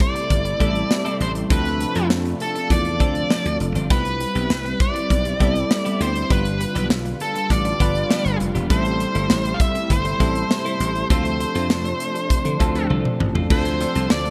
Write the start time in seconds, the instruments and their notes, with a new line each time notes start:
Already playing: analog synth pad C3 G3 A3 E4, tine electric piano G3 C4 E4 A4
0.00 lead electric guitar D5, kick, closed hi-hat
0.15 muted clean electric guitar stroke, closed hi-hat
0.30 slap bass G1, muted clean electric guitar stroke, kick, closed hi-hat
0.45 muted clean electric guitar stroke, closed hi-hat
0.60 slap bass A1, tine electric piano G3 C4 E4 A4, clean electric guitar G3 C4 E4 A4, kick, closed hi-hat
0.75 muted clean electric guitar stroke, closed hi-hat
0.90 muted clean electric guitar stroke, snare
1.05 clean electric guitar G3 C4 E4 A4, closed hi-hat
1.20 slap bass A1, clean electric guitar G3 C4 E4 A4, lead electric guitar C5, closed hi-hat
1.35 muted clean electric guitar stroke, closed hi-hat
1.50 slap bass D2, tine electric piano F3 C4 D4 A4, clean electric guitar F3 C4 D4 A4, analog synth pad D4 F4, lead electric guitar B4, kick, closed hi-hat
1.65 closed hi-hat
1.80 muted clean electric guitar stroke, closed hi-hat
1.95 slap bass F2, clean electric guitar F3 C4 D4 A4, closed hi-hat
2.10 slap bass F2, snare
2.25 muted clean electric guitar stroke, closed hi-hat
2.40 lead electric guitar A4, closed hi-hat
2.55 muted clean electric guitar stroke, closed hi-hat
2.70 slap bass E2, lead electric guitar D5, kick, closed hi-hat
2.85 muted clean electric guitar stroke, closed hi-hat
3.00 slap bass D2, tine electric piano F3 C4 D4 A4, clean electric guitar F3 C4 D4 A4, kick, closed hi-hat
3.15 muted clean electric guitar stroke, closed hi-hat
3.30 clean electric guitar F3 C4 D4 A4, snare
3.45 slap bass D2, muted clean electric guitar stroke, closed hi-hat
3.60 slap bass F1, muted clean electric guitar stroke, closed hi-hat
3.75 slap bass G1, clean electric guitar F3 C4 D4 A4, closed hi-hat
3.90 slap bass C2, tine electric piano G3 C4 E4 B4, clean electric guitar G3 B3 E4 G4, analog synth pad G3 C4 E4, lead electric guitar B4, kick, closed hi-hat
4.05 muted clean electric guitar stroke, closed hi-hat
4.20 muted clean electric guitar stroke, closed hi-hat
4.35 slap bass B1, clean electric guitar G3 B3 E4 G4, closed hi-hat
4.50 slap bass C2, muted clean electric guitar stroke, snare
4.65 muted clean electric guitar stroke, closed hi-hat
4.80 lead electric guitar D5, kick, closed hi-hat
4.95 muted clean electric guitar stroke, closed hi-hat
5.10 slap bass B1, muted clean electric guitar stroke, kick, closed hi-hat
5.25 muted clean electric guitar stroke, closed hi-hat
5.40 slap bass C2, tine electric piano G3 C4 E4 A4, clean electric guitar G3 B3 E4 G4, kick, closed hi-hat
5.55 muted clean electric guitar stroke, closed hi-hat
5.70 muted clean electric guitar stroke, snare
5.85 clean electric guitar G3 B3 E4 G4, closed hi-hat
6.00 slap bass D2, clean electric guitar G3 B3 E4 G4, lead electric guitar C5, closed hi-hat
6.15 muted clean electric guitar stroke, closed hi-hat
6.30 slap bass G1, analog synth pad D3 G3 F4, clean electric guitar F3 B3 D4 G4, tine electric piano G3 D4 F4 B4, lead electric guitar B4, kick, closed hi-hat
6.45 muted clean electric guitar stroke, closed hi-hat
6.60 muted clean electric guitar stroke, closed hi-hat
6.75 slap bass B1, clean electric guitar F3 B3 D4 G4, closed hi-hat
6.90 slap bass B1, muted clean electric guitar stroke, snare
7.05 muted clean electric guitar stroke, closed hi-hat
7.20 lead electric guitar A4, closed hi-hat
7.35 muted clean electric guitar stroke, closed hi-hat
7.50 slap bass A1, lead electric guitar D5, kick, closed hi-hat
7.65 muted clean electric guitar stroke, closed hi-hat
7.80 slap bass G1, clean electric guitar F3 B3 D4 G4, tine electric piano G3 D4 F4 B4, kick, closed hi-hat
7.95 muted clean electric guitar stroke, closed hi-hat
8.10 clean electric guitar F3 B3 D4 G4, snare
8.25 slap bass G1, muted clean electric guitar stroke, closed hi-hat
8.40 slap bass F1, muted clean electric guitar stroke, closed hi-hat
8.55 slap bass E1, clean electric guitar F3 B3 D4 G4, closed hi-hat
8.70 slap bass A1, analog synth pad C3 A3 E4, clean electric guitar G3 C4 E4 A4, tine electric piano G3 C4 E4 A4, lead electric guitar C5, kick, closed hi-hat
8.85 muted clean electric guitar stroke, closed hi-hat
9.00 muted clean electric guitar stroke, closed hi-hat
9.15 slap bass G1, clean electric guitar G3 C4 E4 A4, closed hi-hat
9.30 slap bass A1, muted clean electric guitar stroke, snare
9.45 muted clean electric guitar stroke, closed hi-hat
9.54 lead electric guitar F5
9.60 lead electric guitar E5, kick, closed hi-hat
9.75 muted clean electric guitar stroke, closed hi-hat
9.90 slap bass G1, lead electric guitar C5, muted clean electric guitar stroke, kick, closed hi-hat
10.05 muted clean electric guitar stroke, closed hi-hat
10.20 slap bass A1, tine electric piano G3 C4 E4 A4, clean electric guitar G3 C4 E4 A4, kick, closed hi-hat
10.35 muted clean electric guitar stroke, closed hi-hat
10.50 muted clean electric guitar stroke, snare
10.65 clean electric guitar G3 C4 E4 A4, closed hi-hat
10.80 slap bass A1, clean electric guitar G3 C4 E4 A4, closed hi-hat
10.95 muted clean electric guitar stroke, closed hi-hat
11.10 slap bass D2, tine electric piano F3 C4 D4 A4, analog synth pad F3 D4, clean electric guitar A3 C4 F4 A4, lead electric guitar C5, kick, closed hi-hat
11.25 muted clean electric guitar stroke, closed hi-hat
11.40 muted clean electric guitar stroke, closed hi-hat
11.55 slap bass F2, clean electric guitar A3 C4 F4 A4, closed hi-hat
11.70 slap bass F2, muted clean electric guitar stroke, snare
11.85 muted clean electric guitar stroke, closed hi-hat
12.00 closed hi-hat
12.15 muted clean electric guitar stroke, closed hi-hat
12.30 kick, closed hi-hat
12.45 slap bass D3, muted clean electric guitar stroke, closed hi-hat
12.60 slap bass D2, tine electric piano F3 C4 D4 A4, clean electric guitar A3 C4 F4 A4, kick, closed hi-hat
12.75 slap bass D2, muted clean electric guitar stroke, closed hi-hat
12.90 slap bass C2, clean electric guitar A3 C4 F4 A4, high tom
13.05 muted clean electric guitar stroke, mid tom
13.20 slap bass A1, muted clean electric guitar stroke, mid tom
13.35 clean electric guitar A3 C4 F4 A4, floor tom
13.50 slap bass D2, analog synth pad C3 A3 D4 F4, tine electric piano F3 C4 D4 A4, clean electric guitar A3 C4 F4 A4, lead electric guitar C5, kick, crash
13.65 muted clean electric guitar stroke, closed hi-hat
13.80 tine electric piano F3 C4 D4 A4, muted clean electric guitar stroke, closed hi-hat
13.95 slap bass C2, clean electric guitar A3 C4 F4 A4, closed hi-hat
14.10 slap bass D2, lead electric guitar D5, snare
14.25 muted clean electric guitar stroke, closed hi-hat